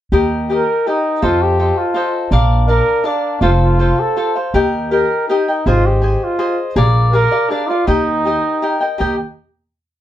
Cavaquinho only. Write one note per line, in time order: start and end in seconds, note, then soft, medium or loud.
0.12 0.48 G4 medium
0.12 0.49 A#4 medium
0.12 0.50 D#5 medium
0.12 0.50 G5 medium
0.50 0.86 G4 soft
0.50 0.86 A#4 soft
0.50 0.86 D#5 soft
0.50 0.87 G5 soft
0.87 1.22 G4 soft
0.87 1.22 A#4 soft
0.87 1.21 D#5 medium
0.87 1.22 G5 soft
1.22 1.59 F4 medium
1.22 1.58 A4 medium
1.22 1.58 C5 medium
1.22 1.59 D#5 medium
1.59 1.94 F4 soft
1.59 1.95 A4 medium
1.59 1.95 C5 soft
1.59 1.95 D#5 soft
1.94 2.31 F4 soft
1.94 2.32 A4 soft
1.94 2.32 C5 soft
1.94 2.32 D#5 medium
2.32 2.67 D4 medium
2.32 2.68 A#4 medium
2.32 2.68 D5 medium
2.32 2.68 F5 medium
2.68 3.02 D4 soft
2.68 3.03 A#4 medium
2.68 3.04 D5 soft
2.68 3.04 F5 soft
3.04 3.41 D4 medium
3.04 3.42 A#4 medium
3.04 3.42 D5 medium
3.04 3.42 F5 medium
3.42 3.78 F4 medium
3.42 3.78 A4 medium
3.42 3.79 C5 medium
3.42 3.80 F5 medium
3.79 4.15 F4 soft
3.79 4.16 A4 soft
3.79 4.16 C5 soft
3.79 4.17 F5 soft
4.17 4.35 F4 soft
4.17 4.36 A4 soft
4.17 4.35 C5 soft
4.17 4.34 F5 soft
4.35 4.54 A4 soft
4.35 4.55 C5 soft
4.35 4.54 F5 soft
4.54 4.90 G4 medium
4.54 4.91 A#4 medium
4.54 4.92 D#5 medium
4.54 4.92 G5 medium
4.91 5.28 G4 soft
4.91 5.29 A#4 soft
4.91 5.29 D#5 soft
4.91 5.29 G5 soft
5.29 5.47 G4 medium
5.29 5.48 A#4 soft
5.29 5.47 D#5 medium
5.29 5.47 G5 medium
5.48 5.67 A#4 soft
5.48 5.66 D#5 soft
5.48 5.66 G5 soft
5.66 6.00 G#4 medium
5.66 6.01 C5 medium
5.66 6.02 D#5 medium
5.66 6.02 G#5 medium
6.02 6.38 G#4 soft
6.02 6.38 C5 soft
6.02 6.38 D#5 soft
6.02 6.39 G#5 medium
6.39 6.75 G#4 medium
6.39 6.76 C5 medium
6.39 6.76 D#5 medium
6.39 6.76 G#5 medium
6.76 7.12 G#4 medium
6.76 7.14 A#4 medium
6.76 7.14 D5 medium
6.76 7.14 F5 medium
7.13 7.32 G#4 medium
7.13 7.31 A#4 medium
7.13 7.30 D5 medium
7.13 7.31 F5 soft
7.31 7.50 A#4 soft
7.31 7.50 D5 medium
7.31 7.50 F5 soft
7.51 7.69 G#4 medium
7.51 7.69 A#4 soft
7.51 7.69 D5 medium
7.51 7.69 F5 medium
7.70 7.86 A#4 soft
7.70 7.87 D5 soft
7.70 7.88 F5 soft
7.87 8.25 G4 medium
7.87 8.26 A#4 medium
7.87 8.26 D#5 medium
7.87 8.27 G5 medium
8.25 8.62 G4 soft
8.25 8.62 A#4 soft
8.25 8.63 D#5 medium
8.25 8.63 G5 soft
8.62 8.81 G4 soft
8.62 8.81 A#4 soft
8.62 8.81 D#5 medium
8.62 8.79 G5 medium
8.81 8.98 A#4 soft
8.81 8.99 D#5 soft
8.81 9.00 G5 soft
8.98 9.14 G4 medium
8.98 9.15 A#4 medium
8.98 9.15 D#5 medium
8.98 9.16 G5 medium